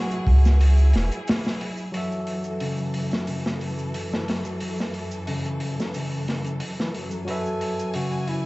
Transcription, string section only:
Already playing: F#3 E4 G#4
1.94 F#2 E3 A4
7.27 E3 G#5

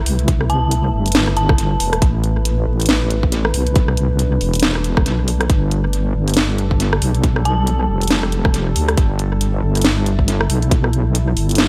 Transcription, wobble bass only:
0.06 C2
0.93 G1
1.80 E1
2.02 A1
2.67 A1
3.54 C2
4.41 E1
5.06 B1
5.50 G1
6.15 G1
7.02 B1
7.89 F1
8.76 D2
8.98 G1
9.63 G1
10.50 B1
11.36 G1

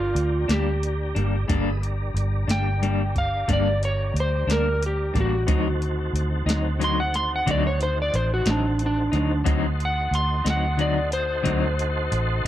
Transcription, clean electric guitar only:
0.48 G3 A#3 D4
1.15 G3 A#3 D4
1.48 G2 G3 A#3 D4
2.48 G3 A#3 D4
2.81 G2 G3 A#3 D4
3.48 G2 G3 A#3 D4
4.48 G3 A#3 D4
5.14 G3 A#3 D4
5.47 D3 F#3 C4 D#4
6.46 F#3 C4 D#4
6.79 D3 F#3 C4 D#4
7.46 D3 F#3 C4 D#4
8.45 F#3 C4 D#4
9.12 F#3 C4 D#4
9.44 D3 F#3 C4 D#4
10.45 F#3 C4 D#4
10.77 D3 F#3 C4 D#4
11.43 D3 F#3 C4 D#4

